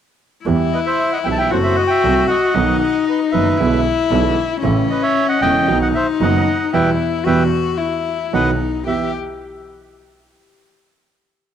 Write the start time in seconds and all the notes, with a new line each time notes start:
0.45 E2 E3 G3 B3 E4 G4
0.73 B4 D#5
0.86 C5 E5
1.12 D#5 F#5
1.24 B1 B2 E3 G3 B3 G4 E5 G5
1.32 A5
1.38 E5 G5
1.50 F#1 F#2 F#3 A3 C4 F#4 A4 C5 F#5
1.63 C5 E5
1.75 D#5 F#5
1.87 E5 G5
2.03 C2 C3 F#3 A3 C4 A4
2.28 D#5 F#5
2.54 B1 B2 D#3 F#3 B3 D#4 F#4
2.80 D#5 F#5
3.06 B4 D#5
3.31 F#1 F#2 D#3 F#3 B3 F#4 B4 E5
3.57 B1 B2 D3 G#3 B3 E4
4.11 B1 B2 D3 G#3 B3 E4
4.63 A1 A2 C#3 E3 A3 C#4 E4
4.90 B4 D#5
5.03 C#5 E5
5.29 D#5 F#5
5.42 E1 E2 C#3 E3 A3 E4 D#5 G5
5.68 B1 B2 D#3 F#3 B3 D#4 F#4
5.82 D#5 F#5
5.95 C5 E5
6.21 F#1 F#2 D#3 F#3 B3 F#4 D#5 F#5
6.73 E2 B2 E3 G3 E4 B4 E5 G5
7.24 E2 B2 E3 G3 F#4 B4 E5 G5
7.77 E4
8.33 B1 B2 D#3 F#3 D#4 B4 D#5 F#5
8.86 E2 B3 E4 G4 E5